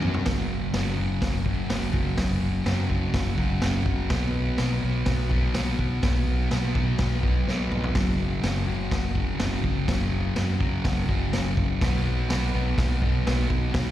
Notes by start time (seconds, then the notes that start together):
Already playing: F#2 F#3 C#4 F#4
0.02 mid tom
0.14 floor tom
0.25 F#1 F#2 C#3 F#3, kick, snare, open hi-hat
0.74 F#1 F#2 C#3 F#3, snare, open hi-hat
0.97 F#1 C#3 F#3
1.22 F#1, kick, snare, open hi-hat
1.45 C#3 F#3, kick
1.69 F#1 F#2 C#3 F#3, snare, open hi-hat
1.94 F#1, kick
2.17 F#1 F#2 C#3 F#3, kick, snare, open hi-hat
2.42 F#1
2.64 F#2 C#3 F#3, snare, open hi-hat
2.89 C#3 F#3, kick
3.14 F#1, kick, snare, open hi-hat
3.37 F#1 C#3 F#3, kick
3.62 F#1 F#2 C#3 F#3, snare, open hi-hat
3.86 F#1, kick
4.10 B1 B2 F#3 B3, kick, snare, open hi-hat
4.58 B1 B2 F#3 B3, snare, open hi-hat
4.82 B1 F#3 B3
5.06 B1, kick, snare, open hi-hat
5.30 F#3 B3, kick
5.55 B1 B2 F#3 B3, snare, open hi-hat
5.79 B1, kick
6.03 B1 B2 F#3 B3, kick, snare, open hi-hat
6.28 B1
6.51 B2 F#3 B3, snare, open hi-hat
6.75 F#3 B3, kick
6.99 B1, kick, snare, open hi-hat
7.23 B1 F#3 B3, kick
7.47 B1 B2 F#3 B3, snare
7.71 B1, mid tom
7.84 floor tom
7.95 F#1 F#2 C#3 F#3, kick, snare, open hi-hat
8.42 F#1 F#2 C#3 F#3, snare, open hi-hat
8.66 F#1 C#3 F#3
8.91 F#1, kick, snare, open hi-hat
9.14 C#3 F#3, kick
9.38 F#1 F#2 C#3 F#3, snare, open hi-hat
9.64 F#1, kick
9.87 F#1 F#2 C#3 F#3, kick, snare, open hi-hat
10.12 F#1
10.36 F#2 C#3 F#3, snare, open hi-hat
10.59 C#3 F#3, kick
10.85 F#1, kick, snare, open hi-hat
11.09 F#1 C#3 F#3, kick
11.32 F#1 F#2 C#3 F#3, snare, open hi-hat
11.57 F#1, kick
11.81 B1 B2 F#3 B3, kick, snare, open hi-hat
12.29 B1 B2 F#3 B3, snare, open hi-hat
12.54 B1 F#3 B3
12.78 B1, kick, snare, open hi-hat
13.02 F#3 B3, kick
13.27 B1 B2 F#3 B3, snare, open hi-hat
13.50 B1, kick
13.72 B1 B2 F#3 B3, kick, snare, open hi-hat